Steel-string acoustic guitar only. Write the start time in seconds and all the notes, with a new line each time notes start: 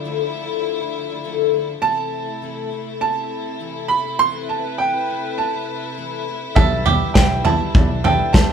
0.05 D3 F3 A3 D4 E4 A4
0.19 A3 D4 E4 A4
0.34 A3 D4 E4 A4
0.80 A3 D4 E4 A4
1.09 A3 D4 E4 A4
1.24 D3 F3 A3 D4 E4 A4
1.53 A3 D4 E4 A4
1.68 A3 D4 E4 A4
1.82 C3 E3 A3 C4 E4 A4
2.26 A3 C4 E4 A4
2.41 C3 E3 A3 C4 E4 A4
2.70 A3 C4 E4 A4
3.15 A3 C4 E4 A4
3.46 A3 C4 E4 A4
3.60 C3 E3 A3 C4 E4 A4
3.89 A3 C4 E4 A4
4.04 A3 C4 E4 A4
4.18 C3 E3 A3 C4 E4 A4
4.63 A3 C4 E4 A4
4.78 C3 E3 A3 C4 E4 A4
4.92 A3 C4 E4 A4
5.07 A3 C4 E4 A4
5.52 A3 C4 E4 A4
5.82 A3 C4 E4 A4
5.97 C3 E3 A3 C4 E4 A4
6.28 A3 C4 E4 A4
6.43 A3 C4 E4 A4
6.57 B2 E3 B3 D4 G4 B4
7.01 B3 D4 G4 B4
7.15 B2 E3 B3 D4 G4 B4
7.45 B3 D4 G4 B4
7.89 B3 D4 G4 B4
8.21 B3 D4
8.34 B2 E3 B3 D4 G4 B4